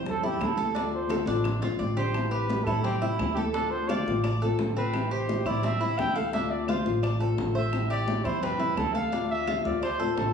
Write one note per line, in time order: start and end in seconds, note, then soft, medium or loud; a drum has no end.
0.00 0.37 E2 medium
0.00 0.22 C5 medium
0.06 0.26 A4 medium
0.06 muted nylon-string guitar stroke medium
0.06 high bongo medium
0.06 high conga soft
0.06 low conga medium
0.23 0.40 G3 medium
0.23 0.40 C4 medium
0.23 0.40 E4 medium
0.23 0.57 E4 medium
0.23 0.46 G4 medium
0.23 high conga soft
0.39 1.22 D2 medium
0.39 0.74 E3 medium
0.39 0.75 G3 medium
0.39 0.75 C4 medium
0.39 0.75 E4 medium
0.39 high bongo medium
0.39 low bongo medium
0.39 high conga medium
0.39 claves medium
0.44 0.94 A4 medium
0.58 0.75 A4 medium
0.58 high conga medium
0.74 1.07 D3 medium
0.74 1.08 A3 medium
0.74 1.09 C4 medium
0.74 1.09 D4 medium
0.74 1.10 F4 medium
0.74 high bongo medium
0.74 high conga soft
0.93 1.26 C5 medium
0.93 high bongo soft
0.93 high conga soft
1.09 1.26 D3 medium
1.09 1.27 A3 medium
1.09 1.26 C4 medium
1.09 1.25 F4 medium
1.09 1.27 A4 medium
1.09 high bongo medium
1.09 high conga loud
1.09 claves medium
1.26 1.59 A1 loud
1.26 1.44 A3 medium
1.26 1.43 C4 medium
1.26 1.62 D4 medium
1.26 1.44 F4 medium
1.26 high conga medium
1.44 muted nylon-string guitar stroke medium
1.44 low bongo loud
1.44 high conga soft
1.44 claves medium
1.61 1.78 G1 medium
1.61 1.79 A3 medium
1.61 1.80 C4 medium
1.61 1.79 F4 medium
1.61 low bongo loud
1.61 high conga soft
1.79 2.61 A1 medium
1.79 2.13 D3 medium
1.79 2.14 A3 medium
1.79 2.14 C4 medium
1.79 2.15 F4 medium
1.79 1.97 D5 medium
1.79 high conga medium
1.97 2.14 G4 medium
1.97 2.32 C5 loud
1.97 low bongo medium
1.97 high conga soft
2.13 2.47 E3 medium
2.13 2.48 G3 medium
2.13 2.49 C4 medium
2.13 2.49 E4 medium
2.13 high bongo medium
2.13 high conga soft
2.13 claves medium
2.30 2.66 G4 medium
2.30 2.66 B4 loud
2.30 high conga soft
2.48 2.66 E3 medium
2.48 2.66 G3 medium
2.48 2.67 C4 medium
2.48 2.66 E4 medium
2.48 high bongo medium
2.48 high conga loud
2.64 3.15 A2 medium
2.64 2.84 C4 medium
2.64 2.84 E4 medium
2.64 2.81 A4 medium
2.64 high conga soft
2.64 low conga medium
2.64 claves medium
2.69 2.83 G3 medium
2.82 3.01 C4 medium
2.82 3.18 G4 loud
2.82 muted nylon-string guitar stroke medium
2.82 high bongo medium
2.82 high conga soft
2.82 low conga medium
3.02 3.19 G3 medium
3.02 3.20 C4 medium
3.02 3.36 E4 medium
3.02 3.19 E4 medium
3.02 high conga soft
3.17 4.01 D2 medium
3.17 3.53 E3 medium
3.17 3.54 G3 medium
3.17 3.54 C4 medium
3.17 3.33 E4 medium
3.17 high bongo medium
3.17 low bongo medium
3.17 high conga medium
3.17 claves medium
3.21 3.55 E4 medium
3.34 3.42 G4 medium
3.34 3.54 A4 medium
3.34 high conga medium
3.52 3.88 D3 medium
3.52 3.88 A3 medium
3.52 3.89 C4 medium
3.52 3.88 D4 medium
3.52 3.72 A4 loud
3.52 high bongo medium
3.52 high conga soft
3.56 3.90 F4 medium
3.71 3.90 C5 loud
3.71 high bongo soft
3.71 high conga soft
3.88 4.06 D3 medium
3.88 4.06 A3 medium
3.88 4.06 C4 medium
3.88 4.23 F4 medium
3.88 4.06 F4 medium
3.88 4.24 D5 loud
3.88 high bongo medium
3.88 high conga loud
3.88 claves medium
4.06 4.55 A1 medium
4.06 4.25 A3 medium
4.06 4.24 C4 medium
4.06 4.24 F4 medium
4.06 high bongo soft
4.06 high conga loud
4.24 4.41 D5 medium
4.24 muted nylon-string guitar stroke medium
4.24 high bongo medium
4.24 high conga soft
4.24 claves medium
4.42 4.58 A3 medium
4.42 4.58 C4 medium
4.42 4.59 F4 medium
4.42 4.76 A4 medium
4.42 high bongo soft
4.58 5.40 A1 medium
4.58 4.93 D3 soft
4.58 4.93 A3 medium
4.58 4.94 C4 medium
4.58 4.94 F4 medium
4.58 high bongo medium
4.58 low bongo medium
4.58 high conga medium
4.77 5.10 C4 medium
4.77 5.14 B4 medium
4.77 high conga soft
4.93 5.28 E3 medium
4.93 5.28 G3 medium
4.93 5.29 C4 medium
4.93 5.29 E4 medium
4.93 high bongo medium
4.93 high conga soft
4.93 claves medium
5.11 5.45 G4 medium
5.11 5.49 C5 medium
5.11 high conga soft
5.29 5.46 E3 medium
5.29 5.46 G3 soft
5.29 5.45 C4 medium
5.29 5.44 E4 medium
5.29 high bongo medium
5.29 high conga loud
5.45 5.94 A2 medium
5.45 5.62 G3 medium
5.45 5.63 C4 medium
5.45 5.63 E4 medium
5.45 5.66 D5 loud
5.45 high conga soft
5.45 low conga medium
5.45 claves medium
5.63 5.80 C4 medium
5.63 6.00 E5 loud
5.63 muted nylon-string guitar stroke medium
5.63 high bongo medium
5.63 high conga soft
5.63 low conga medium
5.80 5.97 G3 medium
5.80 5.98 C4 medium
5.80 5.97 E4 medium
5.80 6.15 E4 medium
5.80 high conga soft
5.97 6.80 D2 medium
5.97 6.32 E3 soft
5.97 6.33 G3 medium
5.97 6.33 C4 medium
5.97 6.33 E4 medium
5.97 6.17 G5 loud
5.97 high bongo medium
5.97 low bongo medium
5.97 high conga medium
5.97 claves medium
6.16 6.33 A4 medium
6.16 6.32 F5 loud
6.16 high conga medium
6.33 6.67 D3 medium
6.33 6.68 A3 medium
6.33 6.68 C4 medium
6.33 6.68 D4 medium
6.33 6.69 F4 medium
6.33 6.52 E5 loud
6.33 high bongo medium
6.33 high conga soft
6.50 6.68 D5 medium
6.50 high bongo soft
6.50 high conga soft
6.68 6.85 D3 medium
6.68 6.86 A3 medium
6.68 6.85 C4 medium
6.68 7.02 F4 medium
6.68 6.84 F4 medium
6.68 7.01 C5 medium
6.68 high bongo medium
6.68 high conga loud
6.68 claves medium
6.85 7.35 A1 loud
6.85 7.01 A3 medium
6.85 7.02 C4 medium
6.85 7.02 F4 medium
6.85 high bongo soft
6.85 high conga medium
7.03 7.20 D5 medium
7.03 muted nylon-string guitar stroke medium
7.03 high bongo medium
7.03 high conga soft
7.03 claves medium
7.19 7.36 A3 medium
7.19 7.37 C4 medium
7.19 7.37 F4 medium
7.19 7.54 A4 medium
7.19 high bongo soft
7.19 high conga soft
7.36 8.19 A1 medium
7.36 7.71 D3 soft
7.36 7.72 A3 medium
7.36 7.72 C4 medium
7.36 7.72 F4 medium
7.36 high bongo medium
7.36 low bongo medium
7.36 high conga medium
7.55 7.89 C5 medium
7.55 7.88 E5 loud
7.55 high conga soft
7.72 8.06 E3 medium
7.72 8.07 G3 medium
7.72 8.07 C4 medium
7.72 8.07 E4 medium
7.72 high bongo medium
7.72 high conga soft
7.72 claves medium
7.90 8.24 G4 medium
7.90 8.26 D5 loud
7.90 high conga soft
8.07 8.24 E3 medium
8.07 8.25 G3 medium
8.07 8.24 C4 medium
8.07 8.22 E4 medium
8.07 high bongo medium
8.07 high conga loud
8.24 8.73 E2 loud
8.24 8.40 G3 medium
8.24 8.41 C4 medium
8.24 8.41 E4 medium
8.24 8.42 E4 medium
8.24 8.44 C5 loud
8.24 high conga soft
8.24 low conga medium
8.24 claves medium
8.41 8.60 C4 medium
8.41 8.77 B4 loud
8.41 muted nylon-string guitar stroke medium
8.41 high bongo medium
8.41 high conga soft
8.41 low conga medium
8.58 8.75 G3 medium
8.58 8.76 C4 medium
8.58 8.76 E4 medium
8.58 8.94 E4 medium
8.58 high conga soft
8.76 9.59 D2 medium
8.76 9.10 E3 medium
8.76 9.11 G3 medium
8.76 9.11 C4 medium
8.76 9.12 E4 medium
8.76 8.96 A4 loud
8.76 high bongo medium
8.76 low bongo medium
8.76 high conga medium
8.76 claves medium
8.95 9.12 A4 medium
8.95 9.29 F5 loud
8.95 high conga medium
9.11 9.45 D3 medium
9.11 9.46 A3 medium
9.11 9.46 C4 medium
9.11 9.46 D4 medium
9.11 9.47 F4 medium
9.11 high bongo medium
9.30 9.62 E5 loud
9.30 high bongo soft
9.30 high conga soft
9.47 9.64 D3 medium
9.47 9.64 A3 medium
9.47 9.64 C4 medium
9.47 9.81 F4 medium
9.47 9.62 F4 medium
9.47 high bongo medium
9.47 high conga loud
9.47 claves medium
9.64 10.13 D2 medium
9.64 9.82 A3 medium
9.64 9.82 C4 medium
9.64 9.81 F4 medium
9.64 9.81 D5 medium
9.64 high bongo soft
9.64 high conga medium
9.82 10.14 C5 loud
9.82 9.99 D5 medium
9.82 muted nylon-string guitar stroke medium
9.82 high bongo medium
9.82 high conga soft
9.82 claves medium
9.99 10.16 A3 medium
9.99 10.17 C4 medium
9.99 10.16 F4 medium
9.99 10.33 A4 medium
9.99 high bongo soft
9.99 high conga soft
10.17 10.33 A1 medium
10.17 10.33 D3 medium
10.17 10.33 A3 medium
10.17 10.33 C4 medium
10.17 10.33 F4 medium
10.17 10.33 A4 medium
10.17 high bongo medium
10.17 low bongo medium
10.17 high conga medium